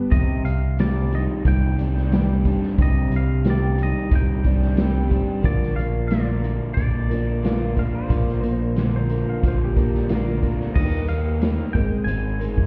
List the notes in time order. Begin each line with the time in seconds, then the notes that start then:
Already playing: G3 B3 D4 G4
0.11 C2 C3 D#3 G3 C4 G4 D#5, kick, closed hi-hat
0.44 C2 C4 D4 G4 F5, closed hi-hat
0.48 G3
0.78 C3 D#3 G3 C4 D4 G4 D5, snare, closed hi-hat
1.12 D#3 G3 C4 G4 D#5, closed hi-hat
1.44 C2 G3 C4 D4 G4 G5, kick, closed hi-hat
1.77 G3 C4 D4 G4, closed hi-hat
1.97 snare
2.11 C3 D#3 G3 C4 D4 G4, snare, closed hi-hat
2.45 G3 C4 D4 G4, kick, closed hi-hat
2.63 snare
2.78 C2 C3 D#3 G3 C4 G4, kick, closed hi-hat
2.82 D#5
3.09 C2 D4 G4, closed hi-hat
3.14 G3 C4 F5
3.44 C3 D#3 G3 C4 D4 G4, snare, closed hi-hat
3.50 D5
3.78 D#3 G3 C4 G4, closed hi-hat
3.83 D#5
4.10 C2 G3 C4 D4 G4, kick, closed hi-hat
4.15 G5
4.43 G3 C4 D4 G4, kick, closed hi-hat
4.62 snare
4.76 C3 D#3 G3 C4 D4 G4, snare, closed hi-hat
5.09 G3 C4 D4 G4, kick, closed hi-hat
5.41 A#1 A#2 D3 F3 A#3 F4 A#4, kick, closed hi-hat
5.45 A#2 D5
5.62 snare
5.75 A#1 F3 A#3 F4 A#4 F5, closed hi-hat
6.08 A#2 D3 F3 A#3 F4 A#4 D5, snare, closed hi-hat
6.41 D3 F3 A#3 F4 A#4, closed hi-hat
6.74 A#1 F3 A#3 F4 A#4 D5, kick, closed hi-hat
7.08 F3 A#3 F4 A#4, closed hi-hat
7.13 D4
7.42 A#2 D3 F3 A#3 F4 A#4, snare, closed hi-hat
7.76 F3 A#3 D4 F4 A#4 F5, kick, closed hi-hat
7.95 C5
8.07 A#1 A#2 D3 F3 A#3 F4 A#4, kick, closed hi-hat
8.12 A#2
8.28 snare
8.41 A#1 F3 A#3 F4 A#4, closed hi-hat
8.76 A#2 D3 F3 A#3 F4 A#4, snare, closed hi-hat
8.82 C5
8.96 C5
9.09 D3 F3 A#3 F4 A#4, closed hi-hat
9.29 F5
9.43 A#1 F3 A#3 F4 A#4, kick, closed hi-hat
9.48 C5
9.64 G4
9.76 F3 A#3 D4 F4 A#4, kick, closed hi-hat
9.94 snare
10.08 A#2 D3 F3 A#3 F4 A#4, snare, closed hi-hat
10.15 A#4
10.42 F3 A3 A#3 D4 F4 A#4, kick, closed hi-hat
10.47 B3 C4
10.53 D4 E4
10.59 F4 G4, snare
10.63 A4 B4
10.70 C5 D5
10.75 D#2 D#3 G3 A#3 D#4 G4 A#4 D#5, kick, crash
11.07 A#3 D#4 A#4 F5, closed hi-hat
11.40 D#3 G3 A#3 D#4 A#4, snare, closed hi-hat
11.73 G#1 G#3 C4 D#4 G#4 A#4 G5, kick, closed hi-hat
11.77 C4
12.04 G#1 G#3 C4 D#4 A#4 G#5, closed hi-hat
12.39 G#3 C4 D#4 A#4, closed hi-hat
12.57 F2, kick